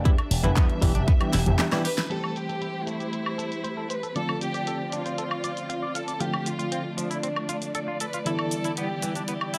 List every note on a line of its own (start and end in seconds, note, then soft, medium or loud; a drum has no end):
0.00 2.07 D4 medium
0.05 0.16 E2 medium
0.05 0.14 E3 medium
0.05 0.14 G3 medium
0.05 0.14 B3 medium
0.05 0.14 D4 medium
0.05 0.09 E4 medium
0.05 0.14 G4 loud
0.05 2.09 G4 medium
0.05 2.09 E5 medium
0.05 kick loud
0.05 closed hi-hat medium
0.18 closed hi-hat soft
0.18 high woodblock medium
0.30 0.41 E1 loud
0.30 open hi-hat loud
0.43 0.54 E1 medium
0.43 0.79 E3 medium
0.43 0.79 G3 medium
0.43 0.79 B3 medium
0.43 0.80 D4 medium
0.43 0.50 E4 medium
0.43 0.80 B4 loud
0.43 closed hi-hat medium
0.56 0.67 E2 medium
0.56 0.66 B3 medium
0.56 kick loud
0.56 clap loud
0.56 closed hi-hat medium
0.70 closed hi-hat soft
0.82 0.93 E1 medium
0.82 0.92 E3 medium
0.82 0.91 E3 medium
0.82 0.91 G3 medium
0.82 0.91 B3 medium
0.82 0.91 D4 medium
0.82 0.92 G4 medium
0.82 kick medium
0.82 open hi-hat medium
0.95 1.06 E1 medium
0.95 1.02 D4 medium
0.95 closed hi-hat medium
1.08 1.18 E2 medium
1.08 1.12 B3 medium
1.08 kick loud
1.08 closed hi-hat medium
1.20 1.35 E3 medium
1.20 1.35 G3 medium
1.20 1.35 B3 medium
1.20 1.35 D4 medium
1.20 1.35 G4 medium
1.20 closed hi-hat soft
1.20 high woodblock medium
1.33 1.44 E1 medium
1.33 1.40 E4 medium
1.33 snare medium
1.33 open hi-hat loud
1.46 1.57 E1 loud
1.46 1.69 E3 medium
1.46 1.69 G3 medium
1.46 1.69 B3 medium
1.46 1.69 D4 medium
1.46 1.69 G4 medium
1.46 closed hi-hat medium
1.59 1.63 G4 medium
1.59 snare medium
1.59 clap loud
1.59 closed hi-hat medium
1.72 1.86 E3 loud
1.72 1.86 G3 medium
1.72 1.86 B3 medium
1.72 1.86 D4 medium
1.72 1.81 E4 medium
1.72 1.86 G4 loud
1.72 snare medium
1.72 closed hi-hat soft
1.72 high woodblock medium
1.85 1.89 G4 medium
1.85 2.09 B4 loud
1.85 open hi-hat medium
1.97 2.01 E4 medium
1.97 snare medium
1.97 closed hi-hat medium
2.09 4.12 E3 medium
2.09 4.12 G3 medium
2.09 4.13 A3 medium
2.09 4.14 A3 medium
2.09 4.13 C4 medium
2.09 4.14 G4 medium
2.09 4.13 G4 medium
2.09 2.14 A4 medium
2.09 2.36 A4 loud
2.09 4.14 C5 medium
2.09 closed hi-hat medium
2.09 crash medium
2.09 shaker soft
2.24 high woodblock medium
2.36 2.87 G4 loud
2.36 closed hi-hat medium
2.36 shaker medium
2.49 2.55 A4 medium
2.49 closed hi-hat medium
2.49 shaker soft
2.61 2.71 E4 medium
2.61 closed hi-hat medium
2.61 shaker soft
2.87 2.97 A3 medium
2.87 3.90 E4 medium
2.87 closed hi-hat medium
2.87 shaker medium
3.00 3.06 G4 medium
3.00 closed hi-hat soft
3.00 shaker soft
3.12 3.17 E4 medium
3.12 closed hi-hat medium
3.12 shaker soft
3.26 high woodblock medium
3.38 3.45 A4 medium
3.38 closed hi-hat medium
3.38 shaker medium
3.52 closed hi-hat soft
3.52 shaker soft
3.64 3.68 C5 medium
3.64 closed hi-hat medium
3.64 shaker soft
3.77 3.87 A4 medium
3.90 4.16 B4 medium
3.90 3.94 C5 medium
3.90 closed hi-hat medium
3.90 shaker medium
4.03 4.07 A4 medium
4.03 closed hi-hat soft
4.03 shaker soft
4.15 6.17 D3 medium
4.15 6.18 F3 medium
4.15 6.18 A3 medium
4.15 6.19 C4 medium
4.15 6.18 C4 medium
4.15 8.22 F4 medium
4.15 6.18 F4 medium
4.15 4.40 A4 loud
4.15 6.19 D5 medium
4.15 4.20 D5 medium
4.15 closed hi-hat medium
4.15 shaker soft
4.29 high woodblock medium
4.41 4.90 G4 loud
4.41 closed hi-hat medium
4.41 shaker medium
4.54 4.61 D5 medium
4.54 closed hi-hat soft
4.54 shaker soft
4.67 4.77 A4 medium
4.67 closed hi-hat medium
4.67 shaker soft
4.92 5.02 D4 medium
4.92 5.96 F4 medium
4.92 closed hi-hat medium
4.92 shaker medium
5.06 5.12 C5 medium
5.06 closed hi-hat soft
5.06 shaker soft
5.18 5.22 A4 medium
5.18 closed hi-hat medium
5.18 shaker soft
5.31 high woodblock medium
5.44 5.51 D5 medium
5.44 closed hi-hat medium
5.44 shaker medium
5.57 closed hi-hat soft
5.57 shaker soft
5.69 5.73 F5 medium
5.69 closed hi-hat medium
5.69 shaker soft
5.83 5.92 D5 medium
5.95 6.21 A4 medium
5.95 5.99 F5 medium
5.95 closed hi-hat medium
5.95 shaker medium
6.08 6.12 D5 medium
6.08 closed hi-hat soft
6.08 shaker soft
6.19 8.22 D3 medium
6.19 8.23 F3 medium
6.19 8.23 A3 medium
6.19 8.24 A3 medium
6.19 8.23 C4 medium
6.19 6.24 F4 medium
6.19 6.47 G4 medium
6.19 9.58 D5 medium
6.19 closed hi-hat medium
6.19 shaker soft
6.34 high woodblock medium
6.46 6.98 F4 medium
6.46 closed hi-hat medium
6.46 shaker medium
6.59 6.65 F4 medium
6.59 closed hi-hat soft
6.59 shaker soft
6.72 6.82 C4 medium
6.72 closed hi-hat medium
6.72 shaker soft
6.97 7.07 F3 medium
6.97 7.97 D4 medium
6.97 closed hi-hat medium
6.97 shaker medium
7.11 7.17 E4 medium
7.11 closed hi-hat soft
7.11 shaker soft
7.23 7.27 C4 medium
7.23 closed hi-hat medium
7.23 shaker soft
7.36 high woodblock medium
7.49 7.56 F4 medium
7.49 closed hi-hat medium
7.49 shaker medium
7.62 closed hi-hat soft
7.62 shaker soft
7.75 7.79 A4 medium
7.75 closed hi-hat medium
7.75 shaker soft
7.88 7.97 F4 medium
8.00 8.04 A4 medium
8.00 8.25 B4 medium
8.00 closed hi-hat medium
8.00 shaker medium
8.13 8.17 F4 medium
8.13 closed hi-hat soft
8.13 shaker soft
8.25 9.58 D3 medium
8.25 9.58 E3 medium
8.25 9.58 G3 medium
8.25 9.58 B3 medium
8.25 9.58 E4 medium
8.25 8.30 E4 medium
8.25 9.58 E4 medium
8.25 8.74 A4 medium
8.25 closed hi-hat medium
8.25 shaker soft
8.39 high woodblock medium
8.51 closed hi-hat medium
8.51 shaker medium
8.64 8.71 E4 medium
8.64 closed hi-hat soft
8.64 shaker soft
8.77 8.87 B3 medium
8.77 9.28 G4 medium
8.77 closed hi-hat medium
8.77 shaker soft
9.02 9.13 E3 medium
9.02 closed hi-hat medium
9.02 shaker medium
9.15 9.22 D4 medium
9.15 closed hi-hat soft
9.15 shaker soft
9.28 9.32 B3 medium
9.28 9.58 G4 medium
9.28 closed hi-hat medium
9.28 shaker soft
9.41 high woodblock medium
9.54 9.58 E4 medium
9.54 closed hi-hat medium
9.54 shaker medium